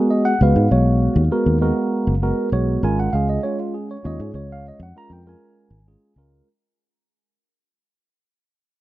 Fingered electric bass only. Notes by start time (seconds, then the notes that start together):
0.41 C#2
0.56 G#2
0.71 B1
1.16 D#2
1.46 D#2
2.07 F#1
2.52 B1
2.83 G#1
3.13 C#2
4.05 D#2
4.19 G#2
4.34 C#2
4.80 F2
5.10 F2
5.71 G#1
6.16 C#2